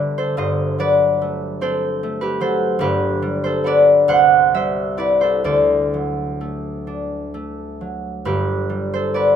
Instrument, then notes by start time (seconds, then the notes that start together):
harp
Already playing: G1 G2 D3 G3 B3 G4 A4 B4 C5 D5
0.18 A4 C5
0.37 G1 G2 C5 D#5
0.79 F#3 B4 D5
1.22 A3
1.61 C4 A4 C5
2.03 A3
2.21 G4 B4
2.40 F#3 A4 C5
2.79 G1 G2 G4 B4
3.22 G3
3.44 A4 C5
3.64 B3 D4 B4 D5
4.08 C2 C5 F#5
4.54 G3 C5 E5
4.97 C4 E4 B4 D5
5.21 A4 C5
5.44 D2 A4 D5
5.94 F#3
6.41 A3
6.87 D4
7.34 A3
7.81 F#3
8.25 G1 G2 G4 B4
8.69 G3
8.94 A4 C5
9.14 B3 B4 D5